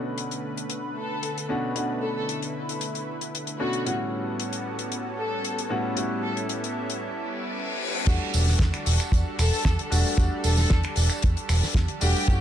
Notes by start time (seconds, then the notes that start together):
Already playing: B2 D3 A3 C#4 D4 F#4 B4 F#5
0.18 closed hi-hat
0.31 closed hi-hat
0.57 closed hi-hat
0.70 closed hi-hat
0.96 A4
1.23 closed hi-hat
1.38 closed hi-hat
1.49 B2 A3 C#4 D4 F#4
1.75 B2 A3 C#4 D4 E4 F#4, closed hi-hat
2.02 A4
2.16 A4
2.29 closed hi-hat
2.42 closed hi-hat
2.69 closed hi-hat
2.81 closed hi-hat
2.95 closed hi-hat
3.21 closed hi-hat
3.35 closed hi-hat
3.47 closed hi-hat
3.59 B2 A3 C#4 D4 F#4
3.73 closed hi-hat
3.85 A2 G3 B3 C#4 E4 F#4 A4, closed hi-hat
4.40 closed hi-hat
4.53 closed hi-hat
4.79 closed hi-hat
4.92 closed hi-hat
5.18 A4
5.45 closed hi-hat
5.58 closed hi-hat
5.69 A2 G3 B3 C#4 E4 F#4
5.95 A2 G3 B3 C#4 E4 F#4, closed hi-hat
6.23 A4
6.37 closed hi-hat
6.49 closed hi-hat
6.64 closed hi-hat
6.90 closed hi-hat
7.02 reverse cymbal
8.06 E2 G3 A3 D4 F#4 A4, kick, closed hi-hat, tambourine, crash
8.34 E1, open hi-hat, tambourine
8.48 snare, tambourine
8.59 E2, kick, snare, closed hi-hat
8.74 finger snap, closed hi-hat
8.86 E1, open hi-hat, tambourine
9.00 finger snap, closed hi-hat, tambourine
9.12 E2, kick, closed hi-hat, tambourine
9.39 E1 A4, finger snap, open hi-hat, tambourine
9.53 tambourine
9.65 E2, kick, snare, closed hi-hat, tambourine
9.79 closed hi-hat
9.90 E1 G3 A3 D4 F#4, open hi-hat, tambourine
10.06 tambourine
10.17 E2 G3 A3 D4 F#4, kick, closed hi-hat, tambourine
10.44 E1 A4, open hi-hat, tambourine
10.57 A4, snare, tambourine
10.70 E2, kick, snare, closed hi-hat, tambourine
10.83 finger snap, closed hi-hat
10.96 E1, open hi-hat, tambourine
11.10 finger snap, closed hi-hat, tambourine
11.22 E2, kick, closed hi-hat
11.37 closed hi-hat
11.49 E1, finger snap, open hi-hat, tambourine
11.63 muted fingered electric bass stroke, snare, tambourine
11.74 E2, kick, snare, closed hi-hat, tambourine
11.88 closed hi-hat
12.01 E1 G3 A3 D4 F#4 G4, open hi-hat, tambourine
12.16 tambourine
12.27 F#2 A3 C#4 E4 F#4 C#5, kick, closed hi-hat, tambourine